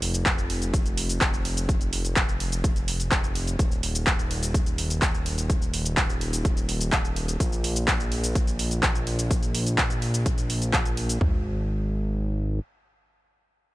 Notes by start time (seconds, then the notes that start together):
Already playing: F1
0.02 open hi-hat
0.14 closed hi-hat, shaker
0.26 kick, clap, closed hi-hat, shaker
0.38 shaker
0.50 open hi-hat
0.62 closed hi-hat, shaker
0.74 kick, closed hi-hat, shaker
0.86 closed hi-hat, shaker
0.97 open hi-hat
1.09 closed hi-hat, shaker
1.21 kick, clap, closed hi-hat, shaker
1.34 shaker
1.45 open hi-hat
1.57 closed hi-hat, shaker
1.69 kick, closed hi-hat, shaker
1.81 closed hi-hat, shaker
1.93 open hi-hat
2.05 closed hi-hat, shaker
2.16 kick, clap, closed hi-hat, shaker
2.29 shaker
2.40 open hi-hat
2.52 closed hi-hat, shaker
2.64 kick, closed hi-hat, shaker
2.76 closed hi-hat, shaker
2.88 open hi-hat
3.00 closed hi-hat, shaker
3.12 kick, clap, closed hi-hat, shaker
3.24 shaker
3.35 open hi-hat
3.47 closed hi-hat, shaker
3.59 D#1, kick, closed hi-hat, shaker
3.72 shaker
3.83 open hi-hat
3.95 closed hi-hat, shaker
4.07 kick, clap, closed hi-hat, shaker
4.19 shaker
4.31 open hi-hat
4.43 closed hi-hat, shaker
4.54 kick, closed hi-hat, shaker
4.66 closed hi-hat, shaker
4.78 open hi-hat
4.90 closed hi-hat, shaker
5.02 kick, clap, closed hi-hat, shaker
5.14 shaker
5.26 open hi-hat
5.38 closed hi-hat, shaker
5.50 kick, closed hi-hat, shaker
5.62 shaker
5.74 open hi-hat
5.85 closed hi-hat, shaker
5.97 kick, clap, closed hi-hat, shaker
6.10 shaker
6.21 open hi-hat
6.33 closed hi-hat, shaker
6.45 kick, closed hi-hat, shaker
6.57 closed hi-hat, shaker
6.69 open hi-hat
6.81 closed hi-hat, shaker
6.92 kick, clap, closed hi-hat, shaker
7.05 shaker
7.16 open hi-hat
7.28 closed hi-hat, shaker
7.40 A#1, kick, closed hi-hat, shaker
7.52 shaker
7.64 open hi-hat
7.76 closed hi-hat, shaker
7.88 kick, clap, closed hi-hat, shaker
8.00 shaker
8.12 open hi-hat
8.24 closed hi-hat, shaker
8.35 kick, closed hi-hat, shaker
8.47 closed hi-hat, shaker
8.59 open hi-hat
8.71 closed hi-hat, shaker
8.83 kick, clap, closed hi-hat, shaker
8.95 shaker
9.07 open hi-hat
9.19 closed hi-hat, shaker
9.31 kick, closed hi-hat, shaker
9.43 closed hi-hat, shaker
9.55 open hi-hat
9.66 closed hi-hat, shaker
9.78 kick, clap, closed hi-hat, shaker
9.90 closed hi-hat, shaker
10.02 open hi-hat
10.14 closed hi-hat, shaker
10.26 kick, closed hi-hat, shaker
10.38 closed hi-hat, shaker
10.50 open hi-hat
10.62 closed hi-hat, shaker
10.73 kick, clap, closed hi-hat, shaker
10.85 closed hi-hat, shaker
10.97 open hi-hat
11.09 closed hi-hat, shaker
11.21 G#1, kick, floor tom